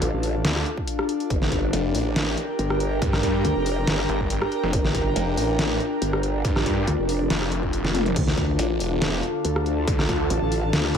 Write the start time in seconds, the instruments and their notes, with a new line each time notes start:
Already playing: ambient pad D3 D4 F4 A4 A5, analog synth pad D4 A4 F5 A5
0.02 wobble bass A1, closed hi-hat
0.13 wobble bass A1
0.23 open hi-hat
0.45 detuned saw bass D2, snare, closed hi-hat
0.56 cross-stick
0.66 closed hi-hat
0.77 kick
0.87 closed hi-hat
0.99 cross-stick
1.09 closed hi-hat
1.20 closed hi-hat
1.30 wobble bass G1, ambient pad G4 A#4, kick, closed hi-hat
1.42 snare
1.52 kick, closed hi-hat
1.65 analog synth pad A#4
1.73 detuned saw bass F1, closed hi-hat
1.85 analog synth pad G5
1.95 detuned saw bass A1, open hi-hat
2.16 snare, closed hi-hat
2.36 analog synth pad A#5, closed hi-hat
2.59 wobble bass G1, closed hi-hat
2.70 cross-stick
2.80 closed hi-hat
3.02 detuned saw bass G2, kick, closed hi-hat
3.13 cross-stick, snare
3.23 kick, closed hi-hat
3.45 wobble bass D2, closed hi-hat
3.56 wobble bass F1
3.66 open hi-hat
3.87 wobble bass G1, snare, closed hi-hat
3.99 cross-stick
4.09 detuned saw bass G1, closed hi-hat
4.20 kick
4.30 closed hi-hat
4.42 cross-stick
4.52 closed hi-hat
4.63 detuned saw bass F1
4.73 wobble bass G1, ambient pad F4, kick, closed hi-hat
4.85 snare
4.95 kick, closed hi-hat
5.16 detuned saw bass F1, closed hi-hat
5.37 detuned saw bass A1, open hi-hat
5.59 snare, closed hi-hat
5.80 closed hi-hat
6.02 wobble bass G1, closed hi-hat
6.13 cross-stick
6.23 closed hi-hat
6.45 detuned saw bass G2, kick, closed hi-hat
6.56 cross-stick, snare
6.66 kick, closed hi-hat
6.87 wobble bass D2, closed hi-hat
6.99 wobble bass F1
7.09 open hi-hat
7.30 detuned saw bass F1, snare, closed hi-hat
7.42 cross-stick
7.52 closed hi-hat
7.63 kick
7.73 closed hi-hat
7.85 snare
7.95 closed hi-hat, mid tom
8.06 closed hi-hat, mid tom
8.16 wobble bass D2, ambient pad D3 D4 A4 A5, kick, closed hi-hat, crash
8.27 snare
8.37 kick, closed hi-hat
8.51 analog synth pad F5
8.59 detuned saw bass A1, closed hi-hat
8.68 analog synth pad A4
8.80 detuned saw bass E1, open hi-hat
9.02 analog synth pad A5, snare, closed hi-hat
9.23 closed hi-hat
9.45 wobble bass D2, closed hi-hat
9.56 cross-stick
9.66 closed hi-hat
9.87 detuned saw bass D2, kick, closed hi-hat
9.99 cross-stick, snare
10.09 kick, closed hi-hat
10.30 wobble bass A1, closed hi-hat
10.42 wobble bass A1
10.52 open hi-hat
10.73 wobble bass D2, snare, closed hi-hat
10.85 cross-stick